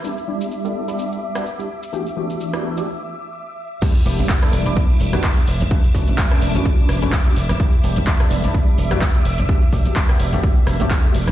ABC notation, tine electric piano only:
X:1
M:4/4
L:1/16
Q:"Swing 16ths" 1/4=127
K:Glyd
V:1 name="Tine electric piano"
[G,B,DEG] z [G,B,DEG]3 [G,B,DEA]2 [G,B,DEG]4 [G,B,DEF] z [G,B,DEG] z2 | [E,A,B,DFG] z [E,A,B,DFG]3 [E,A,B,DFG]2 [E,A,B,DFG] z8 | [G,B,DEG] z [G,B,DEG]3 [G,B,DEA]2 [G,B,DEG]4 [G,B,DEF] z [G,B,DEG] z2 | [A,CDEF] z [A,CDEF]3 [A,CDEA]2 [A,CDEF]4 [A,CDEF] z [A,CDEF] z2 |
[G,B,DEG] z [G,B,DEG]3 [G,B,DEA]2 [G,B,DEG]4 [G,B,DEF] z [G,B,DEG] z2 | [A,B,DFG] z [A,B,DFG]3 [A,B,DFG]2 [A,B,DFG]4 [A,B,DFG]4- [A,B,DFG] |]